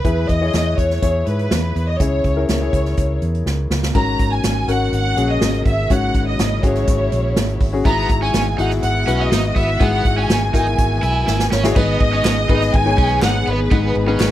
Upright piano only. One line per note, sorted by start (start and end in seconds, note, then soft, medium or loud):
0.04 0.74 E3 medium
0.04 0.35 E4 medium
0.04 0.35 G#4 medium
0.04 0.35 B4 medium
0.41 0.92 E4 medium
0.41 0.92 G#4 medium
0.41 0.93 C#5 medium
1.02 1.84 E4 medium
1.02 1.84 G#4 medium
1.02 1.84 C#5 medium
2.00 2.69 C#3 medium
2.00 2.31 E4 medium
2.00 2.31 G#4 medium
2.00 2.31 C#5 medium
2.36 2.57 E4 medium
2.36 2.57 G#4 medium
2.36 2.57 A#4 medium
2.61 3.43 E4 medium
2.61 3.43 G#4 medium
2.61 3.43 C#5 medium
3.95 4.64 G#2 medium
3.95 4.56 C#4 medium
3.95 4.56 F#4 medium
3.95 4.56 A#4 medium
4.68 5.09 C#4 medium
4.68 5.09 F#4 medium
4.68 5.09 A#4 medium
5.17 5.78 C#4 medium
5.17 5.78 F#4 medium
5.17 5.78 G#4 medium
5.90 6.59 G#2 medium
5.90 6.52 C#4 medium
5.90 6.52 F#4 medium
5.90 6.52 C#5 medium
6.63 7.45 C#4 medium
6.63 7.45 F#4 medium
6.63 7.45 G#4 medium
7.73 7.83 C#4 medium
7.73 7.83 F#4 medium
7.73 7.83 G#4 medium
7.85 8.55 G#2 medium
7.85 8.47 E4 medium
7.85 8.47 F#4 medium
7.85 8.47 G#4 medium
8.58 8.99 E4 medium
8.58 8.99 F#4 medium
8.58 9.00 G#4 medium
9.07 9.69 E4 medium
9.07 9.69 F#4 medium
9.07 9.69 B4 medium
9.80 10.50 G#2 medium
9.80 10.42 E4 medium
9.80 10.42 F#4 medium
9.80 10.42 G#4 medium
10.53 11.36 E4 medium
10.53 11.36 F#4 medium
10.53 11.36 A#4 medium
11.64 11.74 E4 medium
11.64 11.74 F#4 medium
11.64 11.74 G#4 loud
11.76 12.45 G#2 medium
11.76 12.37 B3 medium
11.76 12.37 D#4 medium
11.76 12.38 G#4 medium
11.76 12.38 B4 medium
12.49 12.80 B3 medium
12.49 12.80 D#4 medium
12.49 12.80 G#4 medium
12.49 12.80 B4 medium
12.86 13.57 B3 medium
12.86 13.57 D#4 medium
12.86 13.57 G#4 medium
12.86 13.57 C#5 medium
13.71 14.31 G#2 medium
13.71 14.02 B3 medium
13.71 14.02 D#4 medium
13.71 14.02 G#4 medium
13.71 14.02 B4 medium
14.07 14.31 B3 medium
14.07 14.31 D#4 medium
14.07 14.31 G#4 medium
14.07 14.31 B4 medium